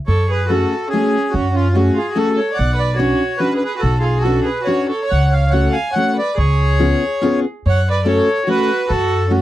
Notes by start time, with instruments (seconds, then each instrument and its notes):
0.07 upright bass F#2, violin A4, accordion C#5
0.30 violin G#4, accordion B4
0.48 steel-string acoustic guitar A3 C#4 F#4 G#4, violin F#4, accordion A4
0.89 violin C#4, accordion G#4
0.93 steel-string acoustic guitar A3 C#4 F#4 G#4
1.30 violin C#4, accordion F#4
1.34 upright bass F#2
1.53 violin C#4, accordion F4
1.73 steel-string acoustic guitar A3 C#4 F#4 G#4, violin C#4, accordion F#4
1.96 violin F4, accordion G#4
2.13 steel-string acoustic guitar A3 C#4 F#4 G#4, violin F#4
2.17 accordion A4
2.34 violin A4, accordion C#5
2.54 violin D5, accordion F#5
2.59 upright bass B1
2.76 violin B4, accordion D5
2.95 steel-string acoustic guitar D4, violin F#4, accordion C#5
3.00 steel-string acoustic guitar C#4 F#4 B4
3.37 steel-string acoustic guitar C#4 D4 F#4 B4, violin F#4, accordion B4
3.54 violin G#4, accordion B4
3.63 violin G#4, accordion B4
3.78 violin F#4, accordion A4
3.83 upright bass B1
4.00 violin F4, accordion G#4
4.21 violin F#4, steel-string acoustic guitar F#4, accordion A4
4.26 steel-string acoustic guitar C#4 D4 B4
4.45 violin G#4, accordion B4
4.64 steel-string acoustic guitar C#4 D4, violin F#4, accordion C#5
4.68 steel-string acoustic guitar F#4 B4
4.89 violin A4, accordion C#5
5.05 violin C#5
5.10 upright bass C#2, accordion F#5
5.28 violin C#5
5.32 accordion F5
5.50 steel-string acoustic guitar A3 C#4 F#4, violin C#5, accordion F#5
5.54 steel-string acoustic guitar A4
5.73 violin F5, accordion G#5
5.92 steel-string acoustic guitar A3 C#4, violin C#5, accordion F#5
5.97 steel-string acoustic guitar F#4 A4
6.17 violin B4, accordion D5
6.37 upright bass C#2, violin G#4, accordion C#5
6.79 steel-string acoustic guitar B3 C#4 F4 G#4
7.21 steel-string acoustic guitar B3 C#4 F4 G#4
7.66 upright bass F#2, violin C#5, accordion F#5
7.90 violin B4, accordion D5
8.05 steel-string acoustic guitar A3 C#4 F#4 A4, violin A4, accordion C#5
8.47 steel-string acoustic guitar A3 C#4 F#4 A4, violin F#4, accordion B4
8.89 upright bass F#2, violin F#4, accordion A4
9.30 steel-string acoustic guitar A3 C#4 F#4 A4, violin C#4, accordion F#4